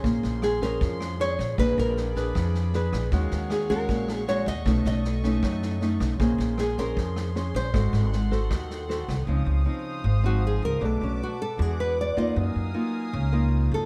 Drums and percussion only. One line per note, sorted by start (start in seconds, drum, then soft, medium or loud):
0.04 kick medium
0.04 snare soft
0.23 snare soft
0.42 cross-stick medium
0.42 snare soft
0.62 kick soft
0.62 snare soft
0.81 kick medium
0.81 snare soft
1.00 cross-stick medium
1.00 snare soft
1.20 snare soft
1.39 kick soft
1.39 snare soft
1.58 kick medium
1.58 cross-stick medium
1.58 snare soft
1.78 snare soft
1.97 snare soft
2.16 kick soft
2.16 snare soft
2.35 kick medium
2.35 cross-stick medium
2.35 snare soft
2.54 snare soft
2.73 snare soft
2.93 kick soft
2.93 cross-stick medium
2.93 snare soft
3.12 kick medium
3.12 snare soft
3.31 snare soft
3.50 cross-stick medium
3.50 snare soft
3.70 kick soft
3.70 snare soft
3.89 kick medium
3.89 snare soft
4.08 cross-stick soft
4.08 snare soft
4.27 snare soft
4.46 kick soft
4.46 snare soft
4.66 kick medium
4.66 cross-stick medium
4.66 snare soft
4.85 snare soft
5.04 snare soft
5.23 kick soft
5.23 snare soft
5.43 kick medium
5.43 cross-stick medium
5.43 snare soft
5.62 snare soft
5.81 snare soft
6.00 kick soft
6.00 cross-stick medium
6.00 snare soft
6.20 kick medium
6.20 snare soft
6.39 snare soft
6.58 cross-stick medium
6.58 snare soft
6.78 kick soft
6.78 snare soft
6.97 kick medium
6.97 snare soft
7.16 cross-stick medium
7.16 snare soft
7.36 snare soft
7.55 kick soft
7.55 snare soft
7.74 kick medium
7.74 cross-stick medium
7.74 snare soft
7.93 snare soft
8.12 snare soft
8.32 kick soft
8.32 snare soft
8.51 kick medium
8.51 cross-stick medium
8.51 snare soft
8.70 snare soft
8.90 snare soft
9.09 kick soft
9.09 cross-stick medium
9.09 snare soft